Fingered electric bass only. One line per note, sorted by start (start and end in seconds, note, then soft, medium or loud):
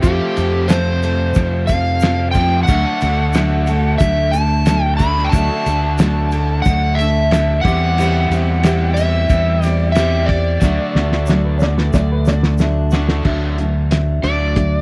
0.04 0.19 F2 loud
0.38 1.32 F2 medium
1.36 2.64 F2 medium
2.69 2.84 D2 loud
3.02 3.97 D2 loud
4.01 5.29 D2 loud
5.33 5.48 D2 loud
5.66 6.61 D2 loud
6.66 7.61 D2 medium
7.65 8.27 E2 loud
8.30 9.25 E2 medium
9.30 10.58 E2 loud
10.62 10.77 D2 medium
10.95 11.90 D2 medium
11.94 13.22 D2 loud
13.25 14.20 D2 loud
14.23 14.81 D2 medium